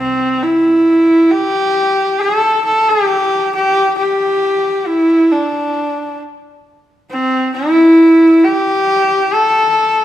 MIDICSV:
0, 0, Header, 1, 2, 480
1, 0, Start_track
1, 0, Tempo, 890208
1, 1905, Time_signature, 4, 2, 24, 8
1, 5417, End_track
2, 0, Start_track
2, 0, Title_t, "Horsehead fiddle"
2, 0, Program_c, 0, 110
2, 0, Note_on_c, 0, 60, 82
2, 232, Note_on_c, 0, 64, 83
2, 240, Note_off_c, 0, 60, 0
2, 707, Note_on_c, 0, 67, 101
2, 716, Note_off_c, 0, 64, 0
2, 1189, Note_on_c, 0, 69, 93
2, 1197, Note_off_c, 0, 67, 0
2, 1427, Note_off_c, 0, 69, 0
2, 1430, Note_on_c, 0, 69, 90
2, 1560, Note_on_c, 0, 67, 96
2, 1568, Note_off_c, 0, 69, 0
2, 1913, Note_off_c, 0, 67, 0
2, 1916, Note_on_c, 0, 67, 98
2, 2134, Note_off_c, 0, 67, 0
2, 2145, Note_on_c, 0, 67, 88
2, 2626, Note_on_c, 0, 64, 86
2, 2634, Note_off_c, 0, 67, 0
2, 2869, Note_on_c, 0, 62, 72
2, 2877, Note_off_c, 0, 64, 0
2, 3347, Note_off_c, 0, 62, 0
2, 3830, Note_on_c, 0, 60, 87
2, 4051, Note_off_c, 0, 60, 0
2, 4067, Note_on_c, 0, 64, 92
2, 4552, Note_on_c, 0, 67, 102
2, 4560, Note_off_c, 0, 64, 0
2, 5036, Note_on_c, 0, 69, 99
2, 5044, Note_off_c, 0, 67, 0
2, 5417, Note_off_c, 0, 69, 0
2, 5417, End_track
0, 0, End_of_file